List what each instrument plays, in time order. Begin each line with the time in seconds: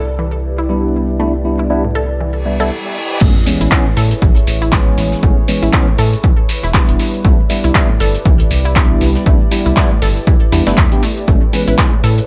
Already playing: analog synth bass C2, ambient pad E4 G4 B4 D5
0.19 synth arpeggio sound E3
0.58 synth arpeggio sound E4
0.69 tine electric piano G3 B3 D4 E4
1.19 tine electric piano G3 B3 D4 E4, synth arpeggio sound A3
1.45 tine electric piano G3 B3 D4 E4
1.59 synth arpeggio sound E4
1.70 tine electric piano G3 B3 D4 E4
1.84 synth arpeggio sound A2
1.95 synth arpeggio sound A4
2.20 synth arpeggio sound E3, reverse cymbal
2.46 tine electric piano G3 B3 D4 E4
2.60 tine electric piano G3 B3 D4 E4, synth arpeggio sound A4
3.21 analog synth bass A1, tine electric piano E3 G#3 B3 C#4, synth arpeggio sound A3, ambient pad E4 G#4 B4 C#5, kick, crash, sub drop, cabasa, shaker
3.46 tine electric piano E3 G#3 B3 C#4, open hi-hat, cabasa, shaker
3.61 analog synth bass A1, synth arpeggio sound E4, closed hi-hat, cabasa
3.71 tine electric piano E3 G#3 B3 C#4, kick, snare, clap, cabasa, shaker
3.86 synth arpeggio sound A2
3.97 analog synth bass A2, synth arpeggio sound A4, open hi-hat, cabasa, shaker
4.11 closed hi-hat, cabasa
4.22 analog synth bass A1, synth arpeggio sound E3, kick, cabasa, shaker
4.36 closed hi-hat
4.47 analog synth bass A1, open hi-hat, cabasa, shaker
4.62 synth arpeggio sound E4, cabasa
4.72 tine electric piano E3 G#3 B3 C#4, kick, snare, clap, cabasa, shaker
4.98 analog synth bass A1, open hi-hat, cabasa, shaker
5.12 snare, cabasa
5.23 analog synth bass A1, tine electric piano E3 G#3 B3 C#4, synth arpeggio sound A3, kick, cabasa, shaker
5.48 tine electric piano E3 G#3 B3 C#4, open hi-hat, cabasa, shaker
5.62 analog synth bass A1, synth arpeggio sound E4, cabasa
5.73 tine electric piano E3 G#3 B3 C#4, kick, snare, clap, cabasa, shaker
5.88 synth arpeggio sound A2
5.98 analog synth bass A2, synth arpeggio sound A4, open hi-hat, cabasa, shaker
6.13 cabasa
6.24 synth arpeggio sound E3, kick, cabasa, shaker
6.49 open hi-hat, cabasa, shaker
6.63 analog synth bass E1, synth arpeggio sound E4, cabasa
6.74 tine electric piano G3 B3 D4 E4, kick, snare, clap, cabasa, shaker
6.88 analog synth bass E1, closed hi-hat
6.99 ambient pad G4 D5, open hi-hat, cabasa, shaker
7.14 cabasa
7.25 analog synth bass C2, tine electric piano G3 B3 D4 E4, synth arpeggio sound A3, kick, cabasa, shaker
7.50 tine electric piano G3 B3 D4 E4, open hi-hat, cabasa, shaker
7.64 analog synth bass C2, synth arpeggio sound E4, closed hi-hat, cabasa
7.75 tine electric piano G3 B3 D4 E4, kick, snare, clap, cabasa, shaker
7.89 synth arpeggio sound A2
8.00 analog synth bass G1, synth arpeggio sound A4, open hi-hat, cabasa, shaker
8.15 closed hi-hat, cabasa
8.25 analog synth bass C2, synth arpeggio sound E3, kick, cabasa, shaker
8.40 closed hi-hat
8.51 analog synth bass C2, open hi-hat, cabasa, shaker
8.65 synth arpeggio sound E4, cabasa
8.76 tine electric piano G3 B3 D4 E4, kick, snare, clap, cabasa, shaker
9.01 analog synth bass C2, open hi-hat, cabasa, shaker
9.15 snare, cabasa
9.26 analog synth bass C2, tine electric piano G3 B3 D4 E4, synth arpeggio sound A3, kick, cabasa, shaker
9.51 tine electric piano G3 B3 D4 E4, open hi-hat, cabasa, shaker
9.66 analog synth bass C2, synth arpeggio sound E4, cabasa
9.77 tine electric piano G3 B3 D4 E4, kick, snare, clap, cabasa, shaker
9.91 synth arpeggio sound A2
10.02 analog synth bass G1, synth arpeggio sound A4, open hi-hat, cabasa, shaker
10.16 cabasa
10.27 synth arpeggio sound E3, kick, cabasa, shaker
10.52 analog synth bass E2, tine electric piano G3 B3 D4 E4, snare, open hi-hat, cabasa, shaker
10.67 analog synth bass G1, tine electric piano G3 B3 D4 E4, synth arpeggio sound A3, snare, cabasa, shaker
10.77 analog synth bass E2, synth arpeggio sound A3, kick, snare, clap, cabasa, shaker
10.92 tine electric piano G3 B3 D4 G4, closed hi-hat
11.03 synth arpeggio sound A3, open hi-hat, cabasa, shaker
11.17 cabasa
11.28 analog synth bass A1, tine electric piano E3 G#3 B3 C#4, synth arpeggio sound A3, ambient pad G#4 B4 C#5, kick, cabasa, shaker
11.53 tine electric piano E3 G#3 B3 C#4, soft synth lead B4, open hi-hat, cabasa, shaker
11.67 analog synth bass A1, synth arpeggio sound E4, soft synth lead B4, closed hi-hat, cabasa
11.78 tine electric piano E3 G#3 B3 C#4, kick, snare, clap, cabasa, shaker
11.93 synth arpeggio sound A2
12.04 analog synth bass A2, synth arpeggio sound A4, open hi-hat, cabasa, shaker
12.18 closed hi-hat, cabasa